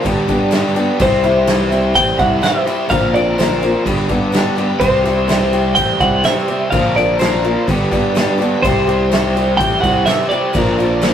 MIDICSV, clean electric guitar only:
0, 0, Header, 1, 2, 480
1, 0, Start_track
1, 0, Tempo, 477707
1, 999, Time_signature, 4, 2, 24, 8
1, 11189, End_track
2, 0, Start_track
2, 0, Title_t, "Clean electric guitar"
2, 0, Program_c, 0, 27
2, 1026, Note_on_c, 0, 72, 87
2, 1964, Note_on_c, 0, 79, 115
2, 1998, Note_off_c, 0, 72, 0
2, 2183, Note_off_c, 0, 79, 0
2, 2201, Note_on_c, 0, 78, 107
2, 2439, Note_off_c, 0, 78, 0
2, 2443, Note_on_c, 0, 76, 101
2, 2910, Note_off_c, 0, 76, 0
2, 2914, Note_on_c, 0, 77, 96
2, 3158, Note_on_c, 0, 74, 91
2, 3161, Note_off_c, 0, 77, 0
2, 3401, Note_off_c, 0, 74, 0
2, 3405, Note_on_c, 0, 72, 71
2, 3846, Note_off_c, 0, 72, 0
2, 4820, Note_on_c, 0, 72, 94
2, 5746, Note_off_c, 0, 72, 0
2, 5777, Note_on_c, 0, 79, 108
2, 6030, Note_off_c, 0, 79, 0
2, 6034, Note_on_c, 0, 78, 105
2, 6276, Note_off_c, 0, 78, 0
2, 6280, Note_on_c, 0, 76, 102
2, 6733, Note_off_c, 0, 76, 0
2, 6737, Note_on_c, 0, 77, 103
2, 6968, Note_off_c, 0, 77, 0
2, 6996, Note_on_c, 0, 74, 85
2, 7226, Note_off_c, 0, 74, 0
2, 7230, Note_on_c, 0, 72, 73
2, 7679, Note_off_c, 0, 72, 0
2, 8667, Note_on_c, 0, 72, 96
2, 9593, Note_off_c, 0, 72, 0
2, 9618, Note_on_c, 0, 79, 116
2, 9850, Note_off_c, 0, 79, 0
2, 9854, Note_on_c, 0, 78, 101
2, 10103, Note_off_c, 0, 78, 0
2, 10107, Note_on_c, 0, 76, 111
2, 10335, Note_off_c, 0, 76, 0
2, 10339, Note_on_c, 0, 74, 93
2, 11189, Note_off_c, 0, 74, 0
2, 11189, End_track
0, 0, End_of_file